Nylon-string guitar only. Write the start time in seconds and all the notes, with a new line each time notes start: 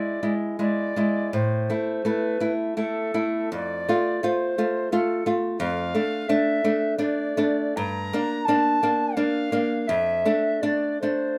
Already playing: G#3 E4
0.23 G#3 E4
0.59 G#3 E4
0.96 G#3 E4
1.33 A2
1.70 A3 E4
2.05 A3 E4
2.40 A3 E4
2.77 A3 E4
3.14 A3 E4
3.52 F2
3.89 A3 F4
4.23 A3 F4
4.58 A3 F4
4.92 A3 F4
5.26 A3 F4
5.60 F2
5.94 A3 D4
6.29 A3 D4
6.64 A3 D4
6.98 A3 D4
7.37 A3 D4
7.77 G2
8.13 A#3 D4
8.48 A#3 D4
8.83 A#3 D4
9.17 A#3 D4
9.52 A#3 D4
9.89 F2
10.25 A3 D4
10.63 A3 D4
11.03 A3 D4